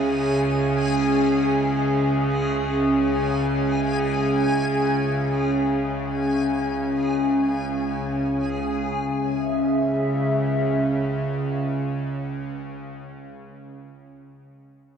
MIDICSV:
0, 0, Header, 1, 4, 480
1, 0, Start_track
1, 0, Key_signature, 4, "minor"
1, 0, Tempo, 500000
1, 14374, End_track
2, 0, Start_track
2, 0, Title_t, "Synth texture"
2, 0, Program_c, 0, 99
2, 0, Note_on_c, 0, 68, 77
2, 0, Note_on_c, 0, 80, 73
2, 8145, Note_off_c, 0, 80, 0
2, 8147, Note_off_c, 0, 68, 0
2, 14374, End_track
3, 0, Start_track
3, 0, Title_t, "Analog synth pad"
3, 0, Program_c, 1, 89
3, 0, Note_on_c, 1, 61, 83
3, 0, Note_on_c, 1, 68, 99
3, 0, Note_on_c, 1, 76, 83
3, 8097, Note_off_c, 1, 61, 0
3, 8109, Note_on_c, 1, 61, 73
3, 8112, Note_off_c, 1, 76, 0
3, 8123, Note_off_c, 1, 68, 0
3, 8285, Note_on_c, 1, 68, 78
3, 8457, Note_on_c, 1, 76, 71
3, 12000, Note_off_c, 1, 61, 0
3, 12176, Note_off_c, 1, 68, 0
3, 12348, Note_off_c, 1, 76, 0
3, 14374, End_track
4, 0, Start_track
4, 0, Title_t, "Synth drone"
4, 0, Program_c, 2, 95
4, 0, Note_on_c, 2, 37, 70
4, 0, Note_on_c, 2, 49, 70
4, 8107, Note_off_c, 2, 37, 0
4, 8111, Note_off_c, 2, 49, 0
4, 8119, Note_on_c, 2, 37, 63
4, 8122, Note_on_c, 2, 49, 66
4, 12010, Note_off_c, 2, 37, 0
4, 12014, Note_off_c, 2, 49, 0
4, 14374, End_track
0, 0, End_of_file